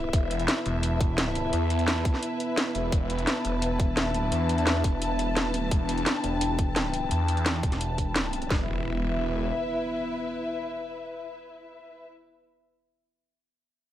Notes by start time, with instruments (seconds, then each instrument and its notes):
Already playing: detuned saw bass E1, analog synth pad B3 E4 E5, string section E4 B4 E5, downlifter
0.13 detuned saw bass E1, analog synth pad A5, kick, closed hi-hat
0.31 closed hi-hat
0.39 closed hi-hat
0.48 snare, closed hi-hat
0.66 detuned saw bass E1, closed hi-hat
0.83 closed hi-hat
1.00 kick, closed hi-hat
1.18 snare, closed hi-hat
1.35 closed hi-hat
1.53 detuned saw bass E2, closed hi-hat
1.70 closed hi-hat
1.79 closed hi-hat
1.88 snare, closed hi-hat
2.05 kick, closed hi-hat
2.14 snare
2.23 closed hi-hat
2.40 closed hi-hat
2.57 snare, closed hi-hat
2.75 detuned saw bass E1, closed hi-hat
2.92 detuned saw bass E1, analog synth pad D4 E5, kick, closed hi-hat
3.10 closed hi-hat
3.19 closed hi-hat
3.27 string section A5, snare, closed hi-hat
3.45 detuned saw bass E1, closed hi-hat
3.62 closed hi-hat
3.80 kick, closed hi-hat
3.97 snare, closed hi-hat
4.06 detuned saw bass D#1
4.14 closed hi-hat
4.32 detuned saw bass E2, closed hi-hat
4.49 closed hi-hat
4.58 closed hi-hat
4.67 snare, closed hi-hat
4.84 detuned saw bass E1, kick, closed hi-hat
5.02 closed hi-hat
5.19 closed hi-hat
5.37 snare, closed hi-hat
5.45 detuned saw bass D#1
5.54 closed hi-hat
5.71 detuned saw bass E1, analog synth pad G5, kick, closed hi-hat
5.89 closed hi-hat
5.98 closed hi-hat
6.06 snare, closed hi-hat
6.24 detuned saw bass E1, closed hi-hat
6.41 closed hi-hat
6.59 kick, closed hi-hat
6.76 snare, closed hi-hat
6.94 closed hi-hat
7.11 detuned saw bass E2, closed hi-hat
7.28 closed hi-hat
7.37 closed hi-hat
7.46 snare, closed hi-hat
7.63 detuned saw bass E1, kick, closed hi-hat
7.72 snare, closed hi-hat
7.81 closed hi-hat
7.98 kick, closed hi-hat
8.16 snare, closed hi-hat
8.33 closed hi-hat
8.42 closed hi-hat
8.50 detuned saw bass E1, analog synth pad B3 E4 E5, string section E4, kick, snare, impact
8.56 string section B4
8.61 string section E5